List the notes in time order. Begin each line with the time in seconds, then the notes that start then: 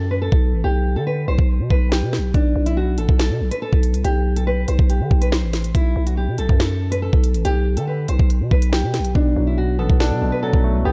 Already playing: F#2
0.11 B4
0.22 A4
0.32 B1, kick
0.53 A1
0.64 B1 G4
0.96 D3 A4
1.07 B4
1.28 B1 C5
1.39 B1, kick
1.60 B2
1.70 B1 B4, kick
1.92 G4, snare
2.02 B2
2.13 snare
2.18 B1
2.34 B1 D4, kick, closed hi-hat
2.56 B1
2.66 E4, closed hi-hat
2.77 F#4
2.98 A1 A4, closed hi-hat
3.09 B1, kick
3.19 A4, snare, closed hi-hat
3.30 B2
3.41 B1
3.51 B4, closed hi-hat
3.62 A4
3.73 B1, kick
3.83 closed hi-hat
3.94 C2, closed hi-hat
4.04 B1 G4, closed hi-hat
4.36 A4, closed hi-hat
4.47 B4
4.68 B1 C5, closed hi-hat
4.79 B1, kick
4.90 G4, closed hi-hat
5.00 D3
5.11 B1, kick
5.21 B4, closed hi-hat
5.32 C5, snare
5.43 A1
5.53 snare, closed hi-hat
5.64 closed hi-hat
5.75 B1 E4, kick, closed hi-hat
5.96 B1
6.07 F#4, closed hi-hat
6.17 G4
6.28 B2
6.38 B1 A4, closed hi-hat
6.49 F#2, kick
6.60 A4, snare, closed hi-hat
6.92 B4, closed hi-hat
7.02 A4
7.13 B1, kick
7.24 closed hi-hat
7.34 A1, closed hi-hat
7.45 B1 G4, closed hi-hat
7.77 D3 A4, closed hi-hat
7.87 B4
8.08 B1 C5, closed hi-hat
8.19 B1, kick
8.30 closed hi-hat
8.41 B2
8.51 B1 B4, kick
8.62 closed hi-hat
8.72 G4, snare
8.83 B2
8.94 snare, closed hi-hat
8.99 B1
9.05 closed hi-hat
9.15 B1 B2 D4, kick
9.36 B1 F#3
9.47 E4
9.58 F#4
9.79 A1 B3 A4
9.90 B1, kick
10.00 D4 A4, snare
10.11 B2
10.22 B1 B2
10.32 B4
10.43 F#3 A4
10.53 B1, kick
10.64 A3
10.75 C2
10.85 B1 B3 G4